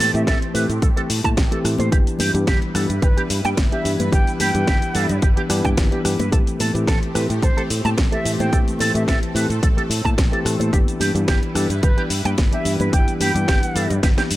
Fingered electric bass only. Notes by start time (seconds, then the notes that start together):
0.00 A2
0.14 A2
0.27 A1
0.55 A2
0.69 A2
0.82 A1
1.10 A2
1.24 A2
1.37 A1
1.65 A2
1.79 A2
1.92 G1
2.20 G2
2.34 G2
2.47 G1
2.75 G2
2.90 G2
3.02 G1
3.30 G2
3.45 G2
3.57 G1
3.85 G2
4.00 G2
4.13 G1
4.40 G2
4.55 G2
4.67 G1
4.95 G2
5.10 G2
5.22 G1
5.50 G2
5.65 G2
5.77 G1
6.05 G2
6.19 G2
6.32 A1
6.60 A2
6.75 A2
6.87 A1
7.15 A2
7.30 A2
7.42 A1
7.70 A2
7.85 A2
7.98 A1
8.25 A2
8.40 A2
8.53 A1
8.80 A2
8.95 A2
9.08 A1
9.35 A2
9.50 A2
9.63 A1
9.90 A2
10.05 A2
10.18 A1
10.45 A2
10.60 A2
10.73 G1
11.00 G2
11.15 G2
11.28 G1
11.55 G2
11.70 G2
11.83 G1
12.10 G2
12.25 G2
12.38 G1
12.65 G2
12.80 G2
12.93 G1
13.20 G2
13.35 G2
13.48 G1
13.76 G2
13.90 G2
14.03 G1
14.31 G2